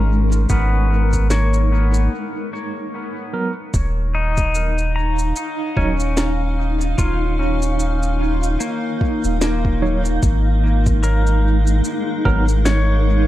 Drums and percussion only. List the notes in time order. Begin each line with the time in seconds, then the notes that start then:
0.32 shaker
0.49 kick, shaker
1.13 kick, shaker
1.30 snare, shaker
1.54 shaker
1.94 shaker
3.74 kick, shaker
4.37 kick, shaker
4.55 shaker
4.78 shaker
5.19 shaker
5.36 shaker
5.77 kick
6.00 shaker
6.17 snare, shaker
6.81 shaker
6.98 kick, shaker
7.62 shaker
7.80 shaker
8.03 shaker
8.43 shaker
8.60 shaker
9.01 kick
9.24 shaker
9.41 snare, shaker
9.65 kick
10.05 shaker
10.23 kick, shaker
10.86 kick, shaker
11.03 shaker
11.27 shaker
11.67 shaker
11.84 shaker
12.25 kick
12.48 shaker
12.66 snare, shaker